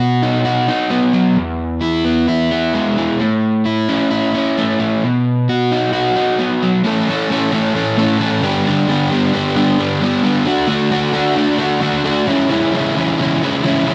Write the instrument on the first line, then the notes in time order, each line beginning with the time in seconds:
overdriven electric guitar
Already playing: B2
0.00 F#4
0.22 D#4
0.45 F#4
0.68 D#4
0.90 B3
1.13 F#3
1.36 E2
1.82 E4
2.05 B3
2.28 E4
2.51 B3
2.74 G#3
2.98 E3
3.19 A2
3.65 E4
3.89 C#4
4.11 E4
4.35 C#4
4.58 A3
4.80 E3
5.04 B2
5.49 F#4
5.72 D#4
5.93 F#4
6.17 D#4
6.39 B3
6.63 F#3
6.84 A2 E3 A3 C#4 A4
7.08 A2 E3 A3 C#4 A4
7.29 A2 E3 A3 C#4 A4
7.51 A2 E3 A3 C#4 A4
7.74 A2 E3 A3 C#4 A4
7.97 A2 E3 A3 C#4 A4
8.19 A2 E3 A3 C#4 A4
8.42 G2 D3 G3 B3 D4 G4
8.65 G2 D3 G3 B3 D4 G4
8.87 G2 D3 G3 B3 D4 G4
9.10 G2 D3 G3 B3 D4 G4
9.32 G2 D3 G3 B3 D4 G4
9.54 G2 D3 G3 B3 D4 G4
9.78 G2 D3 G3 B3 D4 G4
10.01 G2 D3 G3 B3 D4 G4
10.23 G2 D3 G3 B3 D4 G4
10.46 D3 A3 D4 F#4
10.67 D3 A3 D4 F#4
10.91 D3 A3 D4 F#4
11.12 D3 A3 D4 F#4
11.36 D3 A3 D4 F#4
11.58 D3 A3 D4 F#4
11.81 D3 A3 D4 F#4
12.04 D3 A3 D4 F#4
12.27 C#3 E3 G#3 C#4 E4
12.50 C#3 E3 G#3 C#4 E4
12.73 C#3 E3 G#3 C#4 E4
12.95 C#3 E3 G#3 C#4 E4
13.19 C#3 E3 G#3 C#4 E4
13.42 C#3 E3 G#3 C#4 E4
13.63 C#3 E3 G#3 C#4 E4
13.86 C#3 E3 G#3 C#4 E4